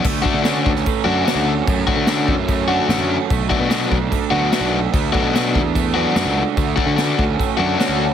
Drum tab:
CC |x---x---x---x---|x---x---x---x---|x---x---x---x---|x---x---x---x---|
SD |----o--o----o---|----o-------o---|----oo------o---|----oo------o---|
BD |o-o---o-o-------|o-o---o-o-------|o-o---o-o-------|o-o---o-o-------|

CC |x---x---x---x---|
SD |----o-------o---|
BD |o-o---o-o-------|